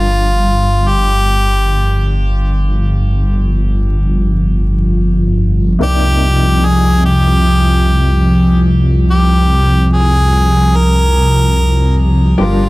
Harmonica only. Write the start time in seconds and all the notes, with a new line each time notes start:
Already playing: F4
0.88 G4
5.83 G4
6.65 G#4
7.05 G4
9.10 G4
9.93 G#4
10.76 A#4
12.40 F4